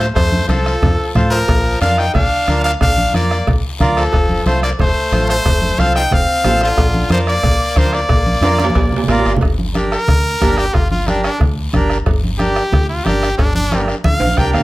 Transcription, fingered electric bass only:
0.16 F2
0.48 C2
0.83 F2
1.15 A2
1.49 A#1
1.81 F2
2.15 A#1
2.48 D2
2.81 A#1
3.14 F2
3.47 A#1
3.80 D2
4.13 F1
4.46 C2
4.79 F1
5.12 A1
5.45 F1
5.79 C2
6.12 F1
6.45 A1
6.78 A#1
7.10 F2
7.44 A#1
7.76 D2
8.10 A#1
8.41 F2
8.75 A#1
9.08 A1
9.25 G1
9.42 G1
10.08 D2
10.42 G1
10.75 G1
11.40 D2
11.74 G1
12.06 G1
12.73 D2
13.07 G1
13.39 G1
14.04 D2
14.21 A#1
14.38 C2
14.54 D2

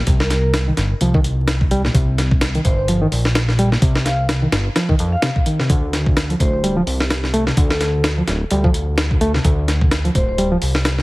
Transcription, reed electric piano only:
0.07 C3
0.68 D#3
1.01 F3
1.14 D#3
1.71 G3
1.85 A#2
1.94 C3
2.55 D#3
2.88 F3
3.02 D#3
3.59 G3
3.72 A#2
3.82 C3
4.42 D#3
4.76 F3
4.89 D#3
5.23 C3
5.46 D#3
5.59 C3
5.70 D3
6.30 F3
6.64 G3
6.77 F3
7.34 A3
7.47 C3
7.57 D3
8.18 F3
8.51 G3
8.64 F3
9.21 A3
9.35 C3
9.45 D3
10.05 F3
10.39 G3
10.52 F3

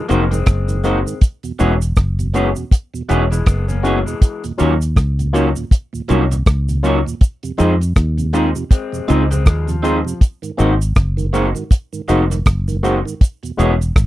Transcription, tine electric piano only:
0.09 A#3 C4 D#4 F#4
0.84 A#3 C4 D#4 F#4
1.59 G#3 B3 C#4 F#4
2.34 G#3 B3 C#4 F#4
2.56 C#4 F#4
3.09 G#3 B3 C#4 F#4
3.83 G#3 B3 C#4 F#4
4.58 F#3 A#3 C#4 F4
5.33 F#3 A#3 C#4 F4
5.55 F4
6.08 F#3 A#3 C#4 F4
6.83 F#3 A#3 C#4 F4
7.58 G#3 C4 D#4 F4
8.33 G#3 C4 D#4 F4
8.56 D#4 F4
9.08 G#3 C4 D#4 F4
9.83 G#3 C4 D#4 F4
10.58 A#3 C4 D#4 F#4
11.33 A#3 C4 D#4 F#4
11.56 D#4 F#4
12.08 A#3 C4 D#4 F#4
12.83 A#3 C4 D#4 F#4
13.57 G#3 B3 C#4 F#4

